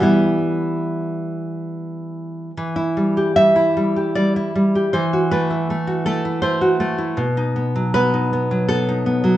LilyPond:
\new Staff \with { instrumentName = "Nylon-string guitar" } { \time 3/4 \key e \minor \tempo 4 = 77 << { e'2~ e'8 r8 | r4 e''4 d''4 | c''8 b'4 a'8 c''4 | r4 b'4 a'4 | } \\ { <e g b>2. | e16 e'16 g16 g'16 g16 e'16 g16 g'16 g16 e'16 g16 g'16 | e16 fis'16 a16 e'16 a16 fis'16 a16 e'16 a16 fis'16 a16 e'16 | b,16 dis'16 b16 fis16 b16 dis'16 b16 fis16 b16 dis'16 b16 fis16 | } >> }